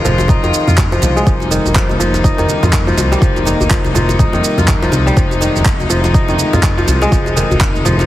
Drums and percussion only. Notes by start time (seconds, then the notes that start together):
0.05 low conga, shaker
0.18 djembe slap, muted conga, djembe tone, shaker
0.28 kick, low conga, shaker
0.44 muted conga, djembe tone, shaker
0.54 shaker
0.67 muted conga, djembe tone, high conga, shaker
0.77 kick, clap, low conga, shaker
0.92 djembe slap, djembe tone, shaker
1.02 djembe slap, muted conga, high conga, djembe bass, shaker
1.17 djembe tone, shaker
1.27 kick, muted conga, shaker
1.40 djembe tone, shaker
1.51 muted conga, shaker
1.65 high conga, djembe tone, shaker
1.75 kick, clap, shaker
1.89 djembe tone, high conga, shaker
2.00 shaker
2.14 muted conga, djembe slap, djembe tone, shaker
2.24 kick, shaker
2.38 muted conga, djembe tone, high conga, shaker
2.49 high conga, shaker
2.63 muted conga, djembe tone, low conga, shaker
2.73 kick, clap, shaker
2.87 djembe tone, shaker
2.98 djembe slap, muted conga, djembe bass, shaker
3.12 djembe slap, djembe tone, shaker
3.22 kick, muted conga, shaker
3.36 djembe tone, shaker
3.45 muted conga, high conga, shaker
3.60 djembe tone, high conga, djembe bass, shaker
3.70 kick, clap, muted conga, shaker
3.84 djembe tone, high conga, shaker
3.95 low conga, shaker
4.09 djembe slap, muted conga, djembe tone, shaker
4.19 kick, low conga, shaker
4.33 muted conga, djembe tone, shaker
4.44 shaker
4.58 muted conga, high conga, djembe tone, shaker
4.68 kick, clap, low conga, shaker
4.82 djembe slap, djembe tone, shaker
4.92 djembe slap, muted conga, high conga, djembe bass, shaker
5.07 djembe tone, shaker
5.16 kick, muted conga, shaker
5.31 djembe tone, shaker
5.41 muted conga, shaker
5.56 high conga, djembe tone, shaker
5.65 kick, clap, muted conga, shaker
5.80 high conga, djembe tone, shaker
5.90 shaker
6.04 djembe slap, muted conga, djembe tone, shaker
6.14 kick, shaker
6.28 muted conga, high conga, djembe tone, shaker
6.38 high conga, shaker
6.53 muted conga, djembe tone, low conga, shaker
6.63 kick, clap, shaker
6.78 djembe tone, shaker
6.88 djembe slap, muted conga, djembe bass, shaker
7.02 djembe slap, djembe tone, shaker
7.12 kick, muted conga, shaker
7.26 djembe tone, shaker
7.37 muted conga, high conga, shaker
7.51 high conga, djembe tone, djembe bass, shaker
7.61 kick, clap, muted conga, shaker
7.75 djembe tone, high conga, shaker
7.85 low conga, shaker
7.99 djembe slap, muted conga, djembe tone, shaker